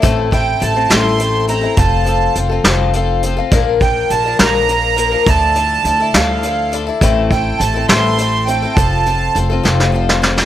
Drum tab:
HH |x-x-x-x-x-x-|x-x-x-x-x-x-|x-x-x-x-x-x-|x-x-x-x-x-x-|
SD |------o-----|------o-----|------o-----|------o-----|
BD |o-o---------|o-----------|o-o---------|o-----------|

HH |x-x-x-x-x-x-|x-x-x-------|
SD |------o-----|------oo-ooo|
BD |o-o---------|o-----------|